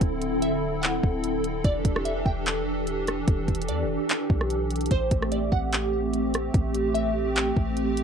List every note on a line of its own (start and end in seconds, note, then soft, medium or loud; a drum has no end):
0.00 0.99 D1 loud
0.00 1.61 D3 medium
0.00 1.61 C4 medium
0.00 1.61 E4 medium
0.00 4.87 A4 medium
0.00 kick loud
0.00 closed hi-hat medium
0.22 closed hi-hat medium
0.42 0.80 E5 medium
0.42 closed hi-hat medium
0.82 1.21 F#5 medium
0.82 clap loud
0.82 closed hi-hat medium
1.03 1.62 D1 loud
1.03 kick loud
1.24 closed hi-hat medium
1.44 closed hi-hat medium
1.64 1.84 E1 loud
1.64 4.88 E3 medium
1.64 4.88 D4 medium
1.64 8.04 G4 medium
1.64 2.03 D5 loud
1.64 kick loud
1.64 closed hi-hat medium
1.85 2.24 E1 loud
1.85 kick medium
1.85 closed hi-hat medium
1.96 cross-stick loud
2.05 2.25 E5 medium
2.05 closed hi-hat medium
2.26 3.24 E1 loud
2.26 2.83 G5 medium
2.26 kick medium
2.46 clap loud
2.46 closed hi-hat medium
2.87 closed hi-hat medium
3.07 cross-stick loud
3.07 closed hi-hat medium
3.28 3.47 E1 loud
3.28 kick loud
3.28 closed hi-hat medium
3.48 3.70 E1 loud
3.48 kick medium
3.48 closed hi-hat medium
3.55 closed hi-hat medium
3.62 closed hi-hat medium
3.68 3.85 E2 loud
3.68 4.46 D5 medium
3.68 closed hi-hat medium
3.84 3.98 E1 loud
4.09 clap loud
4.09 closed hi-hat medium
4.30 4.89 B1 loud
4.30 kick loud
4.41 cross-stick medium
4.50 closed hi-hat medium
4.71 closed hi-hat medium
4.76 closed hi-hat medium
4.81 closed hi-hat medium
4.86 closed hi-hat medium
4.91 5.11 A1 loud
4.91 8.04 A3 medium
4.91 8.04 C4 medium
4.91 5.30 C5 loud
4.91 kick loud
4.91 closed hi-hat medium
5.11 5.51 A1 loud
5.11 kick medium
5.11 closed hi-hat medium
5.22 cross-stick loud
5.32 5.51 D5 medium
5.32 closed hi-hat medium
5.52 6.50 A1 loud
5.52 6.10 F#5 medium
5.52 kick medium
5.73 clap loud
5.73 closed hi-hat medium
6.13 closed hi-hat medium
6.34 cross-stick loud
6.34 closed hi-hat medium
6.54 7.52 A1 loud
6.54 kick loud
6.54 closed hi-hat medium
6.75 closed hi-hat medium
6.94 7.33 E5 medium
6.94 closed hi-hat medium
7.35 7.74 G5 medium
7.35 clap loud
7.35 closed hi-hat medium
7.57 8.04 A1 loud
7.57 kick loud
7.77 closed hi-hat medium
7.97 closed hi-hat medium